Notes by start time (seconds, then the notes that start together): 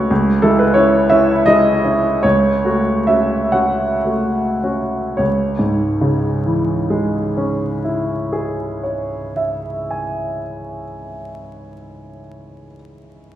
Already playing: C#2 A3 C#4 F#4 A4 B4 C#5
0.10 C#2
0.42 G#3 E4 A4
0.59 B4
0.74 C#4 E4 C#5
1.09 C#4 E4 E5
1.46 G#3 E4 D#5
1.85 C#4 E4
2.23 C#2 C#5
2.65 A3 F#4
3.07 C#4 F#4 E5
3.52 C#4 F#4 F#5
4.05 A3 F#4
4.63 C#4 F#4
5.17 C#2 C#5
5.59 G#2
6.01 C#3
6.46 E3
6.90 G#3
7.37 C#4
7.84 E4
8.32 G#4
8.83 C#5
9.36 E5
9.91 G#5